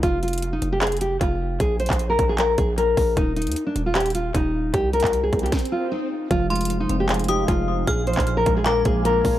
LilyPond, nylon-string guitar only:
\new Staff \with { instrumentName = "Nylon-string guitar" } { \time 4/4 \key f \dorian \tempo 4 = 153 f'8 f'8. ees'8 g'16 aes'8 g'8 f'4 | aes'8 c''8. bes'8 aes'16 bes'8 aes'8 bes'4 | ees'8 ees'8. d'8 f'16 g'8 f'8 ees'4 | g'8 bes'8. aes'8 g'16 r8 f'8 ees'4 |
f'8 f'8. ees'8 g'16 aes'8 g'8 f'4 | aes'8 c''8. bes'8 aes'16 bes'8 aes'8 bes'4 | }